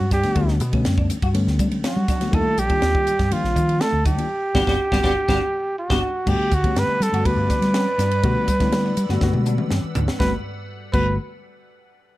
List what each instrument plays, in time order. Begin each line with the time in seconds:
Already playing: trombone F#3, trumpet F#4
0.00 fingered electric bass G2
0.11 trombone G3, reed electric piano B3 G4, clean electric guitar D4, trumpet G4, kick, snare, hi-hat pedal, ride
0.23 reed electric piano D3 G3 A3 B3 D4, snare, ride
0.35 fingered electric bass D2, reed electric piano D3 G3 A3 B3 F#4, clean electric guitar D4, kick, ride
0.48 snare
0.60 fingered electric bass B2, hi-hat pedal, ride
0.73 reed electric piano D3 G3 A3 B3 C#4, clean electric guitar C#4, kick, ride
0.85 fingered electric bass F#2, snare, ride
0.98 clean electric guitar D4, kick
1.10 hi-hat pedal, ride
1.22 fingered electric bass G2, clean electric guitar F#4, kick, ride
1.34 reed electric piano D3 G3 A3 B3 C#4, ride
1.47 fingered electric bass D2, snare
1.59 fingered electric bass G3, clean electric guitar D4, kick, hi-hat pedal, ride
1.71 fingered electric bass G3, ride
1.83 clean electric guitar C#4, trumpet F#4, muted fingered electric bass stroke, snare, ride
1.87 trombone F#3
1.96 fingered electric bass G3
2.07 reed electric piano B3 F#4, clean electric guitar D4, kick, snare, hi-hat pedal, ride
2.19 reed electric piano D3 G3 A3 B3 F#4, muted fingered electric bass stroke, snare, ride
2.31 fingered electric bass D#2, reed electric piano D#3 G3 A#3 D4 F4, clean electric guitar D#4, trumpet A4, kick, ride
2.36 trombone A3
2.45 muted fingered electric bass stroke
2.57 fingered electric bass A#1, trombone G3, trumpet G4, hi-hat pedal, ride
2.69 reed electric piano D#3 G3 A#3 D4 F4, clean electric guitar D4, kick, ride
2.82 fingered electric bass D#2, snare, ride
2.95 clean electric guitar D#4, kick
3.07 muted fingered electric bass stroke, hi-hat pedal, ride
3.19 fingered electric bass G2, clean electric guitar G4, kick, snare, ride
3.31 reed electric piano D#3 G3 A#3 D4 F4, trombone F3, trumpet F4, muted fingered electric bass stroke, ride
3.44 fingered electric bass A#1, snare
3.56 fingered electric bass D#3, clean electric guitar D#4, kick, hi-hat pedal, ride
3.69 ride
3.81 trombone A3, clean electric guitar D4, trumpet A4, snare, ride
3.92 fingered electric bass D2
4.04 trombone G3, reed electric piano D4 F4, clean electric guitar D#4, trumpet G4, kick, hi-hat pedal, ride
4.17 reed electric piano D#3 G3 A#3 D4 F4, ride
4.54 fingered electric bass G1, reed electric piano G3 B3 D4, trombone G3, clean electric guitar D4 F#4 G4, kick, snare
4.67 fingered electric bass G1, trombone G3, reed electric piano G3 B3 D4, clean electric guitar D4 F#4 G4, kick, snare
4.92 fingered electric bass G1, trombone G3, reed electric piano G3 B3 D4, clean electric guitar D4 F#4 G4, kick, snare
5.03 fingered electric bass G1, reed electric piano G3 B3 D4, trombone G3, clean electric guitar D4 F#4 G4, kick, snare
5.28 fingered electric bass G1, trombone G3, reed electric piano G3 B3 D4, clean electric guitar D4 F#4 G4, kick, snare
5.79 trumpet F#4
5.90 fingered electric bass G1, trombone G3, reed electric piano G3 B3 D4, clean electric guitar D4 F#4 G4, kick, snare
6.26 fingered electric bass G2, reed electric piano D3 G3 A3 B3 F#4, clean electric guitar D4, trumpet G4, ambient pad B4 D5 F#5 D6, kick, crash
6.39 muted fingered electric bass stroke
6.52 fingered electric bass D2, trumpet F#4, kick, hi-hat pedal, ride
6.63 reed electric piano D3 G3 A3 B3 G4, clean electric guitar C#4, muted fingered electric bass stroke, kick, ride
6.76 fingered electric bass G2, trumpet B4, snare, ride
6.88 clean electric guitar D4, muted fingered electric bass stroke
7.00 fingered electric bass G3, trumpet A4, snare, hi-hat pedal, ride
7.12 fingered electric bass G2, reed electric piano D3 G3 A3 B3 A4, clean electric guitar F#4, ride
7.25 fingered electric bass D2, reed electric piano D3 G3 A3 B3 F#4, trumpet B4, kick, ride
7.37 fingered electric bass G2
7.50 clean electric guitar D4, muted fingered electric bass stroke, kick, snare, hi-hat pedal, ride
7.62 fingered electric bass G3, snare, ride
7.74 clean electric guitar C#4, snare, ride
7.98 fingered electric bass G2, reed electric piano B3 F#4, clean electric guitar D4, snare, hi-hat pedal, ride
8.11 ride
8.22 fingered electric bass B2, reed electric piano D3 G3 A3 B3 F#4, clean electric guitar D4, ambient pad E6, kick, ride
8.36 muted fingered electric bass stroke
8.48 fingered electric bass G3, kick, hi-hat pedal, ride
8.59 reed electric piano D3 G3 A3 B3 E4, clean electric guitar C#4, kick, snare, ride
8.72 fingered electric bass G3, snare, ride
8.86 clean electric guitar D4
8.97 fingered electric bass G3, hi-hat pedal, ride
9.09 fingered electric bass G2, reed electric piano D3 G3 A3 B3 F#4, clean electric guitar F#4, snare
9.21 fingered electric bass G2, reed electric piano D3 G3 A3 B3 F#4, kick, snare
9.33 fingered electric bass B2, high tom
9.46 clean electric guitar D4, hi-hat pedal
9.58 mid tom
9.71 fingered electric bass G2, clean electric guitar C#4, snare
9.84 muted fingered electric bass stroke
9.95 fingered electric bass D2, reed electric piano B3 F#4, clean electric guitar D4, floor tom, hi-hat pedal
10.08 muted fingered electric bass stroke, snare
10.20 fingered electric bass G1, reed electric piano D3 G3 A3 B3 F#4, clean electric guitar G3, trumpet B4, kick, snare
10.93 fingered electric bass G1, reed electric piano D3 G3 A3 B3 F#4, clean electric guitar G3, trumpet B4, kick, crash